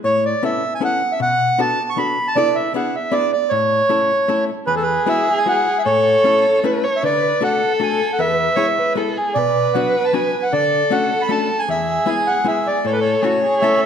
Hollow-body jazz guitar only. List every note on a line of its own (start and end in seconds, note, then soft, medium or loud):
0.04 0.33 A2 medium
0.43 0.62 B3 medium
0.43 0.63 C#4 medium
0.43 0.63 E4 medium
0.43 0.63 A4 medium
0.81 1.01 B3 medium
0.81 1.01 C#4 soft
0.81 1.01 E4 soft
0.81 1.02 A4 medium
1.20 1.49 B2 medium
1.58 1.78 B3 medium
1.58 1.78 D4 medium
1.58 1.79 F#4 medium
1.58 1.79 A4 medium
1.97 2.17 B3 medium
1.97 2.17 D4 medium
1.97 2.18 F#4 soft
1.97 2.18 A4 medium
2.36 2.67 B3 medium
2.36 2.68 D4 medium
2.36 2.68 E4 medium
2.36 2.68 A4 medium
2.74 2.94 B3 medium
2.74 2.94 D4 medium
2.74 2.95 E4 soft
2.74 2.95 G#4 medium
3.12 3.32 B3 medium
3.12 3.32 D4 soft
3.12 3.33 E4 soft
3.12 3.33 G#4 medium
3.51 3.80 A2 medium
3.89 4.10 A3 medium
3.89 4.10 C#4 medium
3.89 4.10 E4 medium
3.89 4.10 A4 medium
4.28 4.49 A3 medium
4.28 4.49 C#4 medium
4.28 4.49 E4 medium
4.28 4.50 A4 medium
4.67 4.97 E2 medium
5.06 5.27 G#3 medium
5.06 5.27 B3 medium
5.06 5.28 E4 medium
5.06 5.28 F#4 medium
5.46 5.66 G#3 medium
5.46 5.66 B3 soft
5.46 5.67 E4 soft
5.46 5.67 F#4 medium
5.86 6.15 A2 medium
6.24 6.44 A3 medium
6.24 6.45 C#4 medium
6.24 6.45 E4 medium
6.24 6.45 A4 medium
6.64 6.84 A3 medium
6.64 6.84 C#4 medium
6.64 6.84 E4 medium
6.64 6.84 A4 medium
7.03 7.32 D3 medium
7.41 7.61 A3 medium
7.41 7.61 D4 medium
7.41 7.61 F#4 medium
7.41 7.62 A4 medium
7.80 8.00 A3 medium
7.80 8.00 D4 medium
7.80 8.00 F#4 medium
7.80 8.00 A4 medium
8.19 8.48 E2 medium
8.56 8.77 G#3 medium
8.56 8.77 B3 medium
8.56 8.77 E4 medium
8.56 8.78 G#4 medium
8.95 9.16 G#3 medium
8.95 9.17 B3 medium
8.95 9.17 E4 medium
8.95 9.17 G#4 medium
9.36 9.65 B2 medium
9.75 9.95 F#3 medium
9.75 9.95 B3 medium
9.75 9.96 D4 medium
9.75 9.96 F#4 medium
10.13 10.34 F#3 soft
10.13 10.34 B3 soft
10.13 10.34 D4 medium
10.13 10.34 F#4 medium
10.53 10.82 D3 medium
10.90 11.11 A3 medium
10.90 11.11 C#4 medium
10.90 11.12 D4 medium
10.90 11.12 F#4 medium
11.29 11.50 A3 medium
11.29 11.50 C#4 medium
11.29 11.50 D4 medium
11.29 11.50 F#4 medium
11.69 11.98 E2 medium
12.06 12.27 G#3 medium
12.06 12.27 B3 medium
12.06 12.27 E4 medium
12.06 12.28 G#4 medium
12.44 12.66 G#3 medium
12.44 12.66 B3 soft
12.44 12.66 E4 medium
12.44 12.66 G#4 medium
12.85 13.14 A2 medium
13.23 13.44 A3 medium
13.23 13.44 C#4 soft
13.23 13.44 E4 medium
13.23 13.44 A4 medium
13.62 13.83 A3 medium
13.62 13.83 C#4 soft
13.62 13.84 E4 medium
13.62 13.84 A4 medium